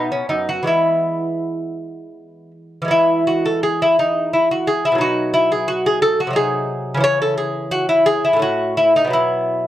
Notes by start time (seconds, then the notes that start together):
Already playing: B2 B3 D#4
0.12 C#4
0.29 F#2 D#4
0.49 F#4
0.63 E3 G#3 B3
0.67 E4
2.82 E3 G#3
2.88 B3 E4
3.27 F#4
3.45 A4
3.63 G#4
3.82 E4
3.99 D#4
4.33 E4
4.51 F#4
4.67 G#4
4.85 E4
4.92 B2 F#3
4.98 D#4 F#4
5.34 E4
5.52 G#4
5.68 F#4
5.86 G#4
6.02 A4
6.20 F#4
6.27 C3 F#3
6.33 D#4 G#4
6.94 C#3 E3
7.00 C#4 C#5
7.22 A4
7.38 G#4
7.71 F#4
7.89 E4
8.06 G#4
8.25 E4
8.33 A2 A3
8.39 C#4 F#4
8.77 E4
8.96 D#4
9.04 B2 F#3
9.10 B3 E4